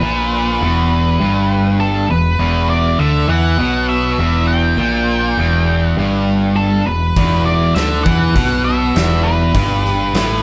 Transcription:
Already playing: B4
0.01 A#1 A#2
0.61 E1 E2
1.20 G1 G2
1.80 A4
2.10 E1 E2 B4
2.39 E1 E2
2.70 D5
2.99 D2 D3 E5
3.28 E2 E3 F#5
3.58 B1 B2
3.89 E5
4.18 E1 E2
4.48 G5
4.77 A#1 A#2
5.37 E1 E2
5.84 F#5
5.97 G1 G2
6.56 A4
6.86 E1 E2 B4
7.16 E1 E2, kick, open hi-hat
7.46 D5
7.75 D2 D3 E5, snare, open hi-hat
8.04 E2 E3 F#5, kick
8.35 B1 B2, kick, open hi-hat
8.64 E5
8.95 E1 E2, snare, open hi-hat
9.23 B4
9.54 G1 G2, kick, open hi-hat
9.85 snare
10.13 A1 A2, snare, open hi-hat

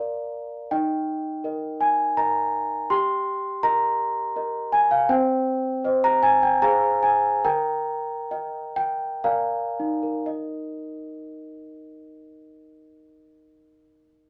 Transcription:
Already playing: A#4 F5 A#5
0.00 D5
0.71 D#4 D#5 G5
1.44 A#4 D#5
1.81 G#5
2.17 A#4 D#5 A#5
2.90 G4 G5 C6
3.63 A#4 D#5 A#5
4.36 A#4 D#5
4.72 G#5
4.91 F5
5.09 C4 C5 G5
5.85 C5 D#5
6.04 A#5
6.23 G#5
6.43 G5
6.62 G#4 C5 F5 G#5 A#5
7.03 G#5
7.45 A#4 G5 A#5
8.31 D#5 G5
8.76 G5
9.24 A#4 D5 F5 G#5 A#5
9.80 D#4
10.03 A#4
10.26 D#5

